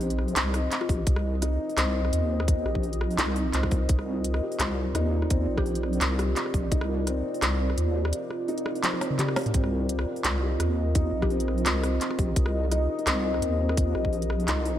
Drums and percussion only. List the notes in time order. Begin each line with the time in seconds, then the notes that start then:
0.01 open hi-hat
0.10 closed hi-hat
0.19 cross-stick
0.28 open hi-hat
0.36 clap, closed hi-hat
0.54 cross-stick, open hi-hat
0.72 clap, closed hi-hat
0.81 cross-stick
0.89 kick, open hi-hat
1.07 kick, closed hi-hat
1.16 cross-stick
1.42 cross-stick, closed hi-hat
1.69 open hi-hat
1.78 cross-stick, clap, closed hi-hat
2.05 cross-stick
2.13 closed hi-hat
2.40 cross-stick
2.48 kick, closed hi-hat
2.66 cross-stick
2.75 kick
2.83 open hi-hat
2.93 closed hi-hat
3.01 cross-stick
3.11 open hi-hat
3.18 clap, closed hi-hat
3.28 cross-stick
3.36 open hi-hat
3.54 clap, closed hi-hat
3.63 kick, cross-stick
3.71 kick, open hi-hat
3.89 kick, closed hi-hat
3.99 cross-stick
4.24 closed hi-hat
4.34 cross-stick
4.52 open hi-hat
4.60 cross-stick, clap, closed hi-hat
4.95 cross-stick, closed hi-hat
5.22 cross-stick
5.30 kick, closed hi-hat
5.57 kick, cross-stick
5.66 open hi-hat
5.75 closed hi-hat
5.83 cross-stick
5.93 open hi-hat
6.01 clap, closed hi-hat
6.19 cross-stick, open hi-hat
6.36 clap, closed hi-hat
6.46 cross-stick
6.54 kick, open hi-hat
6.72 kick, closed hi-hat
6.81 cross-stick
7.07 cross-stick, closed hi-hat
7.34 open hi-hat
7.42 cross-stick, clap, closed hi-hat
7.70 cross-stick
7.78 closed hi-hat
8.05 cross-stick
8.13 closed hi-hat
8.30 cross-stick
8.48 open hi-hat
8.58 closed hi-hat
8.66 cross-stick
8.75 open hi-hat
8.84 clap, closed hi-hat, high tom
8.93 cross-stick, high tom
9.01 snare, open hi-hat
9.11 mid tom
9.19 clap, closed hi-hat, mid tom
9.28 cross-stick
9.36 snare, open hi-hat
9.39 open hi-hat
9.41 open hi-hat
9.43 closed hi-hat, mid tom, open hi-hat
9.54 kick, closed hi-hat
9.64 cross-stick
9.89 closed hi-hat
9.99 cross-stick
10.16 open hi-hat
10.24 cross-stick, clap, closed hi-hat
10.60 cross-stick, closed hi-hat
10.95 kick, closed hi-hat
11.22 kick, cross-stick
11.30 open hi-hat
11.40 closed hi-hat
11.48 cross-stick
11.58 open hi-hat
11.66 clap, closed hi-hat
11.83 cross-stick, open hi-hat
12.01 clap, closed hi-hat
12.10 cross-stick
12.19 kick, open hi-hat
12.36 kick, closed hi-hat
12.46 cross-stick
12.72 cross-stick, closed hi-hat
12.99 open hi-hat
13.07 cross-stick, clap, closed hi-hat
13.34 cross-stick
13.42 closed hi-hat
13.69 cross-stick
13.77 kick, closed hi-hat
13.95 cross-stick
14.05 kick
14.13 open hi-hat
14.22 closed hi-hat
14.30 cross-stick
14.40 open hi-hat
14.48 clap, closed hi-hat
14.57 cross-stick
14.65 open hi-hat